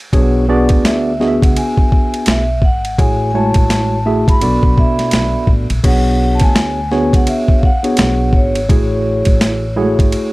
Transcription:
0.13 0.66 B1 loud
0.13 0.44 B3 medium
0.13 0.44 D4 medium
0.13 0.45 F#4 medium
0.13 0.45 G#4 medium
0.13 0.45 C#5 medium
0.13 kick loud
0.13 ride medium
0.49 1.12 B3 medium
0.49 1.12 D4 medium
0.49 1.12 F#4 medium
0.49 1.12 G#4 medium
0.49 1.12 D5 medium
0.69 1.37 D2 medium
0.69 kick medium
0.69 ride medium
0.85 1.44 E5 medium
0.85 snare loud
0.85 hi-hat pedal soft
0.85 ride medium
1.20 2.45 B3 medium
1.20 2.45 D4 medium
1.20 2.45 F#4 medium
1.20 2.45 G#4 medium
1.20 1.28 D#5 medium
1.20 snare soft
1.28 2.49 E5 medium
1.42 1.55 C#2 medium
1.42 1.55 F#5 medium
1.42 kick loud
1.42 ride medium
1.56 2.30 G#5 medium
1.56 ride medium
1.77 kick medium
1.92 kick medium
2.14 ride medium
2.26 2.62 B1 medium
2.26 2.61 E5 medium
2.26 snare loud
2.26 hi-hat pedal medium
2.26 ride medium
2.62 2.95 G#1 medium
2.62 3.00 F#5 medium
2.62 kick medium
2.85 ride medium
2.98 3.52 A1 loud
2.98 3.30 A3 medium
2.98 3.30 E4 medium
2.98 3.30 F#4 medium
2.98 3.30 G#4 medium
2.98 3.30 C#5 medium
2.98 3.29 G#5 loud
2.98 kick loud
2.98 ride medium
3.30 3.35 G#5 medium
3.34 3.98 G#3 medium
3.34 3.97 A3 medium
3.34 3.97 E4 medium
3.34 3.98 F#4 medium
3.34 3.98 C#5 medium
3.34 4.30 A5 medium
3.54 4.23 A1 medium
3.54 kick medium
3.54 ride medium
3.70 snare loud
3.70 hi-hat pedal soft
3.70 ride medium
4.05 4.41 A3 medium
4.05 4.41 E4 medium
4.05 4.41 F#4 medium
4.05 4.42 G#4 medium
4.05 4.42 E5 medium
4.28 4.40 G#1 medium
4.28 5.46 B5 medium
4.28 kick loud
4.28 ride medium
4.41 4.61 B1 medium
4.41 5.66 B3 medium
4.41 5.66 D4 medium
4.41 5.67 F#4 medium
4.41 5.67 A4 medium
4.41 5.67 D5 medium
4.41 ride medium
4.63 4.76 B1 medium
4.63 kick medium
4.78 5.10 B2 medium
4.78 5.45 E5 medium
4.78 kick medium
4.99 snare soft
4.99 ride medium
5.11 5.32 B1 medium
5.11 snare loud
5.11 hi-hat pedal medium
5.11 ride medium
5.47 5.67 A1 medium
5.47 kick medium
5.70 5.83 A#1 medium
5.70 ride medium
5.84 6.37 B1 loud
5.84 6.79 B3 medium
5.84 6.79 D4 medium
5.84 6.79 F#4 medium
5.84 6.79 G#4 medium
5.84 6.79 C#5 medium
5.84 6.35 F#5 loud
5.84 kick loud
5.84 crash medium
5.84 ride medium
6.35 6.42 A5 medium
6.40 7.09 D2 medium
6.40 7.10 G#5 loud
6.40 kick medium
6.40 ride medium
6.56 snare loud
6.56 hi-hat pedal soft
6.56 ride medium
6.91 7.69 B3 medium
6.91 7.69 D4 medium
6.91 7.69 F#4 medium
6.91 7.69 G#4 medium
6.91 7.69 C#5 medium
6.91 snare soft
7.13 7.26 C#2 medium
7.13 7.28 F#5 medium
7.13 kick loud
7.13 ride medium
7.27 7.59 E5 medium
7.27 ride medium
7.48 kick medium
7.59 7.64 F5 medium
7.63 8.37 F#5 loud
7.63 kick medium
7.83 8.59 B3 medium
7.83 8.59 D4 medium
7.83 8.59 F#4 medium
7.83 8.59 G#4 medium
7.83 8.60 C#5 medium
7.83 ride medium
7.97 8.31 B1 loud
7.97 snare loud
7.97 hi-hat pedal medium
7.97 ride medium
8.33 8.66 G#1 medium
8.33 9.74 C#5 medium
8.33 kick medium
8.55 ride medium
8.69 9.23 A1 loud
8.69 9.64 A3 medium
8.69 9.64 E4 medium
8.69 9.64 F#4 medium
8.69 9.64 G#4 medium
8.69 9.65 C#5 medium
8.69 kick loud
8.69 ride medium
9.25 9.94 A1 medium
9.25 kick medium
9.25 ride medium
9.41 snare loud
9.41 hi-hat pedal soft
9.41 ride medium
9.76 9.84 G#3 medium
9.76 10.33 E4 medium
9.76 10.33 F#4 medium
9.76 10.33 G#4 medium
9.76 10.33 C#5 medium
9.82 10.33 A3 medium
9.99 10.12 G#1 medium
9.99 kick loud
9.99 ride medium
10.12 ride medium

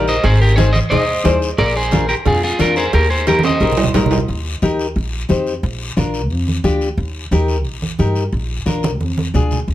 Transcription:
0.00 0.17 A#1 medium
0.00 0.14 D#4 medium
0.00 0.14 G4 medium
0.00 0.15 A#4 medium
0.08 0.23 C5 medium
0.08 0.25 D#5 medium
0.08 short guiro medium
0.24 0.78 G#1 loud
0.24 0.40 G#4 medium
0.24 0.41 C5 medium
0.24 cowbell loud
0.24 long guiro medium
0.41 0.56 G4 medium
0.41 0.56 A#4 medium
0.56 0.69 D#4 medium
0.56 0.73 G#4 medium
0.56 0.70 G#4 medium
0.56 0.72 C5 medium
0.56 0.70 C5 medium
0.56 cowbell medium
0.56 high conga medium
0.56 short guiro medium
0.73 0.79 C5 medium
0.73 0.78 D#5 medium
0.73 high conga medium
0.73 short guiro medium
0.90 1.18 D#2 medium
0.90 1.03 D#4 medium
0.90 1.04 G#4 medium
0.90 1.38 C5 medium
0.90 1.04 C5 medium
0.90 1.25 D#5 medium
0.90 cowbell medium
0.90 low conga medium
0.90 long guiro medium
1.24 1.52 D#2 medium
1.24 1.48 D#4 medium
1.24 1.48 G#4 medium
1.24 1.48 C5 medium
1.24 1.38 D5 medium
1.24 cowbell medium
1.24 high conga medium
1.24 low timbale medium
1.24 short guiro medium
1.42 short guiro medium
1.58 2.12 A#1 loud
1.58 1.74 A#4 medium
1.58 1.77 D5 medium
1.58 cowbell loud
1.58 long guiro medium
1.76 2.07 G#4 medium
1.76 2.10 C5 medium
1.91 2.04 D4 medium
1.91 2.04 F4 medium
1.91 2.04 A#4 medium
1.91 cowbell medium
1.91 high conga medium
1.91 short guiro medium
2.09 2.14 G4 medium
2.09 2.14 A#4 medium
2.09 short guiro medium
2.26 2.53 F2 medium
2.26 2.38 D4 medium
2.26 2.38 F4 medium
2.26 2.42 F4 medium
2.26 2.38 G#4 medium
2.26 2.42 G#4 medium
2.26 cowbell medium
2.26 low conga medium
2.26 long guiro medium
2.44 2.59 F4 medium
2.44 2.61 G#4 medium
2.59 2.87 F2 medium
2.59 2.83 D4 medium
2.59 2.83 F4 medium
2.59 2.76 F4 medium
2.59 2.83 A#4 medium
2.59 2.77 A#4 medium
2.59 cowbell medium
2.59 high conga medium
2.59 short guiro medium
2.76 2.93 G#4 medium
2.76 2.94 C5 medium
2.76 short guiro medium
2.93 3.47 D#2 medium
2.93 3.09 G4 medium
2.93 3.10 A#4 medium
2.93 cowbell loud
2.93 long guiro medium
3.10 3.26 G#4 medium
3.10 3.26 C5 medium
3.27 3.39 D#4 medium
3.27 3.39 G4 medium
3.27 3.43 G4 medium
3.27 3.39 A#4 medium
3.27 3.44 A#4 medium
3.27 cowbell medium
3.27 high conga medium
3.27 short guiro medium
3.39 high conga loud
3.43 3.91 C5 medium
3.43 3.91 D#5 medium
3.43 high timbale medium
3.43 short guiro medium
3.49 high conga medium
3.60 3.87 A#1 medium
3.60 3.72 D#4 medium
3.60 3.73 G4 medium
3.60 3.73 A#4 medium
3.60 cowbell medium
3.60 long guiro medium
3.72 low conga medium
3.77 low timbale medium
3.84 low conga loud
3.94 4.21 A#1 medium
3.94 4.18 D#4 medium
3.94 4.18 G4 medium
3.94 4.18 A#4 medium
3.94 cowbell medium
3.94 low timbale loud
3.94 short guiro medium
4.06 low conga loud
4.11 low timbale loud
4.11 short guiro medium
4.18 low conga medium
4.28 4.55 D#2 medium
4.28 long guiro medium
4.62 4.98 D#2 medium
4.62 4.86 D#4 medium
4.62 4.86 G4 medium
4.62 4.86 A#4 medium
4.62 high conga medium
4.62 short guiro medium
4.79 short guiro medium
4.96 5.23 A#1 medium
4.96 long guiro medium
5.29 5.56 F2 medium
5.29 5.52 D#4 medium
5.29 5.53 G4 medium
5.29 5.53 C5 medium
5.29 high conga medium
5.29 short guiro medium
5.47 short guiro medium
5.63 5.90 A#1 medium
5.63 long guiro medium
5.96 6.31 A#1 medium
5.96 6.20 D4 medium
5.96 6.20 F4 medium
5.96 6.20 A#4 medium
5.96 high conga medium
5.96 short guiro medium
6.14 short guiro medium
6.30 6.57 F2 medium
6.30 long guiro medium
6.48 high conga medium
6.64 6.91 D2 medium
6.64 6.88 D4 medium
6.64 6.88 F4 medium
6.64 6.88 G4 medium
6.64 high conga medium
6.64 short guiro medium
6.81 short guiro medium
6.97 7.25 D#2 medium
6.97 long guiro medium
7.31 7.65 D#2 medium
7.31 7.55 D#4 medium
7.31 7.55 G4 medium
7.31 7.56 A#4 medium
7.31 high conga medium
7.31 short guiro medium
7.48 short guiro medium
7.65 7.92 A#1 medium
7.65 long guiro medium
7.82 high conga medium
7.99 8.26 G2 medium
7.99 8.23 D#4 medium
7.99 8.23 G4 medium
7.99 8.23 A#4 medium
7.99 high conga medium
7.99 short guiro medium
8.15 short guiro medium
8.32 8.60 A#1 medium
8.32 long guiro medium
8.66 9.00 A#1 medium
8.66 8.90 D4 medium
8.66 8.90 F4 medium
8.66 8.90 A#4 medium
8.66 high conga medium
8.66 short guiro medium
8.83 high conga medium
8.83 short guiro medium
9.00 9.27 F2 medium
9.00 high conga medium
9.00 long guiro medium
9.17 high conga loud
9.34 9.61 D2 medium
9.34 9.58 D4 medium
9.34 9.58 F4 medium
9.34 9.58 G#4 medium
9.34 low conga medium
9.34 short guiro medium
9.51 low conga medium
9.51 short guiro medium
9.68 9.74 D#2 medium
9.68 long guiro medium

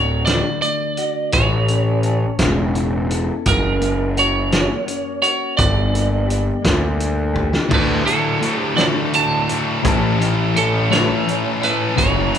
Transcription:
0.00 0.41 D1 loud
0.00 0.98 D2 medium
0.00 0.26 D3 medium
0.00 0.97 F#4 medium
0.00 0.25 C#5 medium
0.26 1.33 D3 medium
0.26 0.59 D5 medium
0.26 snare loud
0.26 closed hi-hat medium
0.62 1.33 A3 medium
0.62 1.33 D5 loud
0.62 closed hi-hat medium
0.97 1.33 F#4 medium
0.97 closed hi-hat medium
1.32 2.24 A1 medium
1.32 3.11 A2 medium
1.32 3.07 C#5 medium
1.32 kick loud
1.32 closed hi-hat medium
1.68 2.39 C#4 medium
1.68 closed hi-hat medium
2.03 3.10 A4 medium
2.03 closed hi-hat medium
2.39 3.30 E1 medium
2.39 3.46 C#4 medium
2.39 kick medium
2.39 snare loud
2.39 closed hi-hat medium
2.75 3.46 E4 medium
2.75 closed hi-hat medium
3.11 3.46 A4 medium
3.11 closed hi-hat medium
3.46 4.67 F#1 loud
3.46 5.23 F#2 medium
3.46 4.14 A#4 medium
3.46 kick loud
3.46 closed hi-hat medium
3.80 4.50 A#3 medium
3.80 closed hi-hat medium
4.17 5.21 F#4 medium
4.17 5.21 C#5 medium
4.17 closed hi-hat medium
4.51 5.58 A#3 medium
4.51 snare loud
4.51 closed hi-hat medium
4.86 5.58 C#4 medium
4.86 closed hi-hat medium
5.22 5.58 F#4 medium
5.22 5.57 C#5 medium
5.22 closed hi-hat medium
5.57 6.50 G1 loud
5.57 7.36 G2 medium
5.57 6.96 D5 loud
5.57 kick loud
5.57 closed hi-hat medium
5.93 6.61 A#3 medium
5.93 closed hi-hat medium
6.28 7.32 G4 medium
6.28 closed hi-hat medium
6.62 7.56 D2 loud
6.62 7.70 A#3 medium
6.62 kick medium
6.62 snare loud
6.62 closed hi-hat medium
6.98 7.70 D4 medium
6.98 closed hi-hat medium
7.34 7.70 G4 medium
7.34 kick medium
7.53 snare medium
7.68 8.03 D2 loud
7.68 8.41 D2 medium
7.68 8.02 D2 loud
7.68 8.04 A2 loud
7.68 8.39 A2 medium
7.68 8.04 D3 loud
7.68 8.07 D3 medium
7.68 8.07 A3 medium
7.68 kick loud
7.68 crash loud
7.72 8.04 F#4 loud
7.72 8.06 B4 medium
8.05 8.38 D2 medium
8.05 8.38 A2 medium
8.05 8.41 D3 medium
8.05 8.42 A3 medium
8.05 8.43 F#4 medium
8.05 8.61 A4 medium
8.05 closed hi-hat medium
8.40 8.73 D2 medium
8.40 8.78 A2 medium
8.40 8.74 A2 medium
8.40 8.77 D3 medium
8.40 8.76 A3 medium
8.40 closed hi-hat medium
8.44 8.75 F#4 medium
8.61 8.80 G4 medium
8.74 9.10 D2 medium
8.74 9.10 A2 medium
8.74 9.10 D3 loud
8.74 9.50 D3 medium
8.74 9.48 A3 medium
8.74 9.46 F#4 medium
8.74 8.86 D5 medium
8.74 snare loud
8.74 closed hi-hat medium
8.79 9.83 D2 medium
8.79 9.83 A2 medium
9.11 9.44 D2 medium
9.11 9.45 A2 medium
9.11 10.17 A5 medium
9.11 closed hi-hat medium
9.47 9.83 D3 medium
9.47 9.83 A3 medium
9.47 9.81 F#4 medium
9.47 closed hi-hat medium
9.83 11.06 A1 loud
9.83 10.17 A2 loud
9.83 10.55 A2 medium
9.83 10.17 E3 loud
9.83 10.56 E3 medium
9.83 10.18 A3 loud
9.83 10.21 A3 medium
9.83 10.21 C#4 loud
9.83 10.19 E4 medium
9.83 kick loud
9.83 closed hi-hat medium
9.87 10.18 A4 medium
10.19 10.52 E3 medium
10.19 10.53 A3 soft
10.19 10.55 C#4 medium
10.19 10.55 E4 medium
10.19 10.56 A4 medium
10.19 closed hi-hat medium
10.54 10.87 A2 medium
10.54 10.87 E3 medium
10.54 10.92 A3 medium
10.54 10.91 C#4 medium
10.54 10.90 E4 medium
10.54 10.90 A4 medium
10.54 10.93 A4 medium
10.54 closed hi-hat medium
10.89 11.23 A2 medium
10.89 11.24 E3 loud
10.89 11.24 A3 loud
10.89 11.61 C#4 medium
10.89 11.60 E4 medium
10.89 11.59 A4 medium
10.89 11.64 C#5 medium
10.89 closed hi-hat medium
10.93 11.95 A2 medium
10.93 11.96 E3 medium
10.93 11.62 A3 medium
10.93 snare medium
11.26 11.58 A2 medium
11.26 11.58 E3 medium
11.26 closed hi-hat medium
11.60 11.96 A3 medium
11.60 11.96 C#4 medium
11.60 11.95 E4 medium
11.60 11.94 A4 medium
11.60 12.00 B4 medium
11.60 closed hi-hat medium
11.96 12.28 F#1 loud
11.96 12.38 F#2 medium
11.96 12.30 F#2 loud
11.96 12.38 C#3 medium
11.96 12.30 C#3 loud
11.96 12.30 F#3 loud
11.96 12.33 F#3 medium
11.96 12.32 A#3 medium
11.96 12.31 C#4 loud
11.96 12.29 F#4 medium
11.96 12.38 C#5 medium
11.96 kick loud
11.96 closed hi-hat loud
12.30 12.38 F#2 medium
12.30 12.38 C#3 medium
12.30 12.38 F#3 medium
12.30 12.38 A#3 medium
12.30 12.38 C#4 medium
12.30 12.38 F#4 medium
12.35 closed hi-hat medium

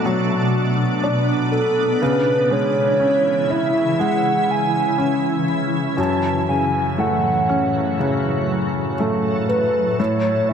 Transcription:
0.00 1.97 B2 medium
0.00 1.98 B2 soft
0.00 0.05 F#3 soft
0.00 1.00 D4 soft
0.00 1.97 D4 medium
0.00 1.49 F#4 soft
0.05 1.98 F#3 soft
0.05 2.00 B3 medium
1.04 1.99 D4 soft
1.51 2.03 A4 medium
2.01 5.95 C#3 medium
2.01 7.95 E3 medium
2.01 5.95 E4 medium
2.01 2.54 B4 medium
2.50 3.98 G#3 soft
2.50 3.52 C#5 medium
3.00 4.94 C#4 soft
3.50 5.44 E4 soft
3.50 4.00 E5 medium
3.99 5.94 G#3 soft
3.99 4.52 F#5 medium
4.51 5.49 G#5 medium
4.98 5.95 C#4 soft
5.97 9.95 F#2 soft
5.97 10.53 A2 medium
5.97 9.95 F#3 medium
5.97 6.45 A5 loud
6.49 7.98 C#3 soft
6.49 7.01 G#5 medium
6.98 8.95 A3 soft
6.98 7.99 F#5 medium
7.49 9.46 C#4 soft
7.99 9.96 C#3 soft
7.99 9.98 A3 medium
9.00 9.97 A3 soft
9.48 9.95 B4 medium
9.99 10.53 A2 soft
9.99 10.53 E3 medium
9.99 10.53 C#4 medium
9.99 10.50 C#5 medium
10.49 10.53 E5 medium

